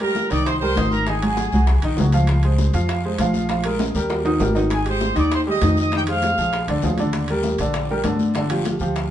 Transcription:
0.00 upright piano G3 G4 A#4, trumpet section A#4 A#5, high bongo, high conga, high timbale
0.15 high bongo, high conga, short guiro
0.30 upright bass C2, upright piano D#3 D#4 D#5, trumpet section D5 D6, high timbale, short guiro
0.45 trumpet section C5 C6, high bongo, high conga, high timbale, long guiro
0.60 upright piano G3 G4 A#4, trumpet section C5 C6, high bongo, high conga
0.75 upright bass G#1, upright piano D#3 D#4 D#5, high bongo, low bongo, high conga, high timbale, low timbale, short guiro
0.90 trumpet section A#4 A#5, high bongo, high conga, short guiro
1.05 upright piano D#3 D#4 D#5, trumpet section G#4 G#5, high bongo, high conga, high timbale, long guiro
1.21 upright piano F#3 F#4 G#4, trumpet section G#4 G#5, high bongo, high conga, high timbale
1.37 high bongo, high conga, high timbale, short guiro
1.52 upright bass C2, upright piano F#3 F#4 G#4, high conga, short guiro
1.67 high bongo, high timbale, long guiro
1.82 upright bass A#1, upright piano D#3 D#4 D#5, high bongo, high conga, high timbale
1.97 upright bass C#2, upright piano F#3 F#4 G#4, high bongo, low bongo, high conga, low timbale, short guiro
2.12 upright piano F3 F4 F5, high bongo, high timbale, short guiro
2.27 high bongo, high timbale, long guiro
2.43 upright piano G#3 G#4 C5, high bongo, high conga, high timbale
2.58 high bongo, high conga, short guiro
2.73 upright bass F2, upright piano F3 F4 F5, high conga, high timbale, short guiro
2.88 high bongo, high conga, high timbale, long guiro
3.04 upright piano G#3 G#4 C5, high bongo, high conga
3.18 upright bass A#1, upright piano F3 F4 F5, high bongo, low bongo, high conga, high timbale, short guiro
3.34 high bongo, high conga, short guiro
3.49 upright piano F3 F4 F5, high bongo, high conga, high timbale, long guiro
3.64 upright piano G#3 G#4 A#4, high bongo, high conga, high timbale
3.79 high bongo, high conga, high timbale, short guiro
3.94 upright bass D#2, upright piano G3 G4 A#4, high conga, short guiro
4.10 high bongo, high conga, low timbale, long guiro
4.25 upright piano D#3 D#4 D#5, high bongo, high conga, low timbale
4.39 upright bass G#1, upright piano G3 G4 A#4, high bongo, low bongo, high conga, low timbale, short guiro
4.55 upright piano D#3 D#4 D#5, high bongo, high conga, low timbale, short guiro
4.70 trumpet section G#4 G#5, high bongo, high conga, high timbale, long guiro
4.86 upright piano G#3 G4 G#4, trumpet section C5 C6, high bongo, high conga, high timbale
5.01 high bongo, high conga, short guiro
5.15 upright bass D#2, upright piano D#3 D#4 D#5, trumpet section D5 D6, high timbale, short guiro
5.31 trumpet section C5 C6, high bongo, high conga, high timbale, long guiro
5.46 upright piano G3 G4 G#4, trumpet section D#5 D#6, high bongo, high conga
5.61 upright bass F2, upright piano D#3 D#4 D#5, high bongo, low bongo, high conga, high timbale, low timbale, short guiro
5.77 trumpet section D#5 D#6, high bongo, high conga, short guiro
5.92 upright piano D#3 D#4 D#5, trumpet section G4 G5, high bongo, high conga, high timbale, long guiro
6.07 upright piano G#3 G#4 C5, trumpet section F5, high bongo, high timbale
6.22 high bongo, high conga, high timbale, short guiro
6.37 upright bass A#1, upright piano F3 F4 G#4, high conga, short guiro
6.52 high bongo, high conga, high timbale, long guiro
6.68 upright bass D2, upright piano D3 D4 D5, high bongo, high conga, high timbale
6.82 upright bass D#2, upright piano F3 F4 G#4, high bongo, low bongo, high conga, low timbale, short guiro
6.98 upright piano D3 D4 D5, high bongo, high conga, high timbale, short guiro
7.13 high bongo, high conga, high timbale, long guiro
7.28 upright piano G3 G4 A#4, high bongo, high timbale
7.43 high bongo, high conga, short guiro
7.58 upright bass A#1, upright piano D3 D4 D5, high conga, high timbale, short guiro
7.73 high bongo, high conga, high timbale, long guiro
7.90 upright piano G3 G4 A#4, high bongo, high conga
8.03 upright bass G1, upright piano D3 D4 D5, high bongo, low bongo, high conga, high timbale, short guiro
8.19 high bongo, high conga, short guiro
8.34 upright piano D3 D4 D5, high bongo, high conga, high timbale, long guiro
8.50 upright piano F3 F4 G4, high bongo, high conga, high timbale
8.64 high bongo, high conga, high timbale, short guiro
8.79 upright bass D2, upright piano F3 F4 G4, high conga, short guiro
8.95 high bongo, high conga, high timbale, long guiro

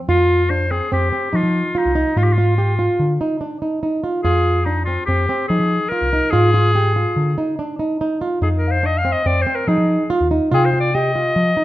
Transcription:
0.09 picked electric bass F2, nylon-string guitar F4, clarinet F4
0.50 nylon-string guitar D4, clarinet C5
0.71 nylon-string guitar C4, clarinet G#4
0.92 picked electric bass F2, nylon-string guitar C4, clarinet G4
1.13 nylon-string guitar C4
1.33 picked electric bass F3, nylon-string guitar D#4, clarinet F4
1.43 picked electric bass F3
1.75 clarinet D#4, nylon-string guitar F4
1.85 picked electric bass C2
1.95 nylon-string guitar D#4
2.16 picked electric bass G#2, nylon-string guitar F4, clarinet F4
2.23 clarinet G4
2.32 clarinet F4
2.38 nylon-string guitar F4
2.58 nylon-string guitar G4
2.79 nylon-string guitar F4
2.99 picked electric bass D3
3.21 nylon-string guitar D#4
3.41 nylon-string guitar D4
3.62 nylon-string guitar D#4
3.83 nylon-string guitar D#4
4.04 nylon-string guitar F4
4.24 picked electric bass F2, nylon-string guitar F4, clarinet G#4
4.65 nylon-string guitar D4, clarinet D#4
4.85 nylon-string guitar C4, clarinet F4
5.06 picked electric bass F2, nylon-string guitar C4, clarinet G4
5.29 nylon-string guitar C4
5.48 picked electric bass F3, nylon-string guitar D#4, clarinet G#4
5.60 picked electric bass F3
5.89 nylon-string guitar F4, clarinet A#4
6.02 picked electric bass C2
6.13 nylon-string guitar D#4
6.31 picked electric bass G#2, nylon-string guitar F4, clarinet G#4
6.54 nylon-string guitar F4
6.75 nylon-string guitar G4
6.96 nylon-string guitar F4
7.16 picked electric bass D3
7.38 nylon-string guitar D#4
7.59 nylon-string guitar D4
7.79 nylon-string guitar D#4
8.01 nylon-string guitar D#4
8.21 nylon-string guitar F4
8.41 picked electric bass F2, nylon-string guitar D#4, clarinet G#4
8.57 clarinet A#4
8.68 clarinet C5, celesta F5
8.83 nylon-string guitar D4, clarinet D#5
8.98 clarinet F5
9.05 nylon-string guitar C4
9.12 clarinet D#5
9.26 picked electric bass F2, nylon-string guitar C4, clarinet D5
9.41 clarinet C5
9.47 nylon-string guitar C4
9.55 clarinet A#4
9.67 picked electric bass F3, nylon-string guitar D#4, clarinet G#4
9.78 picked electric bass F3
10.10 nylon-string guitar F4
10.21 picked electric bass D#2
10.31 nylon-string guitar D#4
10.52 picked electric bass C3, nylon-string guitar F4, clarinet G#4, celesta G5
10.65 clarinet C5
10.74 nylon-string guitar F4
10.80 clarinet D5
10.95 nylon-string guitar G4, clarinet D#5
11.16 nylon-string guitar F4
11.36 picked electric bass F3
11.57 nylon-string guitar D#4

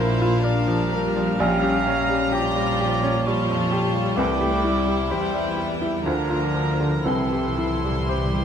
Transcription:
Already playing: double bass section A#1, grand piano A#1 F3 D4 F4, cello section A#2, viola section A#3, french horn section A#3 D4, cor anglais C5, violin section F5
0.00 violin section E4, grand piano A#4
0.21 grand piano F4
0.42 viola section G3, violin section D4, grand piano D4, cor anglais A#4
0.67 grand piano F3
0.92 grand piano A#4
1.16 grand piano F3
1.39 grand piano A#1, double bass section A#1, cello section A#2, french horn section G3 C#4, bassoon G3, violin section C#4 A#5, clarinet C#4, cor anglais F5, flute section G5
1.63 grand piano G4
1.87 violin section C#4, grand piano C#4
2.09 grand piano G3
2.32 viola section F3, violin section F4, grand piano G4, cor anglais D5
2.56 grand piano G3
2.80 grand piano G4
3.03 grand piano C#4
3.25 viola section F3, grand piano G3, violin section F4 A5, cor anglais C#5
3.50 grand piano F2
3.72 viola section G3, grand piano G4
3.95 grand piano G3
4.16 grand piano C2, double bass section C2, cello section C3, bassoon E3, viola section A3, clarinet C4, french horn section E4, violin section E4 G5, cor anglais D5, flute section G5
4.41 grand piano G4
4.64 viola section G3, grand piano E4
4.87 grand piano G3
5.10 double bass section E2, cello section E3, viola section G3, grand piano G4, cor anglais C5, violin section G5
5.35 grand piano G3
5.56 grand piano G4
5.82 grand piano E4
6.05 double bass section D2, grand piano D2, cello section D3, bassoon F3, viola section F3, french horn section F3 F4, clarinet D4, violin section D4 A#5, cor anglais A#4, flute section F5
6.30 grand piano F4
6.55 grand piano F3
6.80 grand piano D3
7.05 double bass section C2, grand piano C2, cello section C3, timpani C3, bassoon E3, viola section E3, clarinet C4, violin section E4 C6, french horn section G4, cor anglais A4, flute section G5
7.14 timpani C3
7.31 timpani C3, grand piano G4
7.49 timpani C3
7.58 timpani C3, grand piano E4
7.66 timpani C3
7.74 timpani C3
7.83 timpani C3, grand piano G3
7.92 timpani C3
8.00 timpani C3
8.09 timpani C3, french horn section G3, cor anglais G4, grand piano C5
8.17 timpani C3
8.25 timpani C3
8.33 timpani C3, grand piano G3

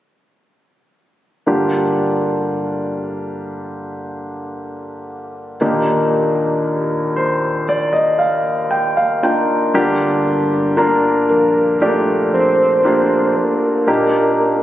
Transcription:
1.47 grand piano G2 D3 A#3 D4 F4 G4
5.61 grand piano D#2 A#2 A#3 D4 D#4 G4
7.16 grand piano C5
7.69 grand piano D5
7.93 grand piano D#5
8.19 grand piano F5
8.71 grand piano G5
8.97 grand piano F5
9.23 grand piano A#3 D4 D#4 F4 G5
9.74 sub bass G1, grand piano G2 D3 A#3 D4 F4 G4
10.77 grand piano A#3 D4 F4 A#4
11.29 sub bass A#1, soft synth lead A#4
11.81 grand piano A3 D4 F4 G4, soft synth lead D5
11.88 grand piano A#3
12.33 sub bass A#1, soft synth lead C5
12.85 grand piano A#3 D4 F4 G4
13.36 soft synth lead A#4
13.87 sub bass D#1, grand piano A#2 A#3 D4 D#4 G4

